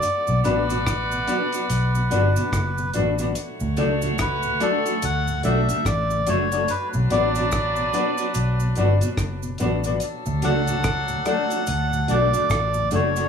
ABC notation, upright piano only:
X:1
M:4/4
L:1/16
Q:"Swing 16ths" 1/4=72
K:D
V:1 name="Upright piano"
z2 [DFBd] z3 [DFBd] z3 [DFBd] z3 [DFBd] [DFBd] | z2 [DFAd] z3 [DFAd] z3 [DFAd] z3 [DFAd] [DFAd] | z2 [DFBd] z3 [DFBd] z3 [DFBd] z3 [DFBd] [DFBd] | z2 [DFAd] z3 [DFAd] z3 [DFAd] z3 [DFAd] [DFAd] |]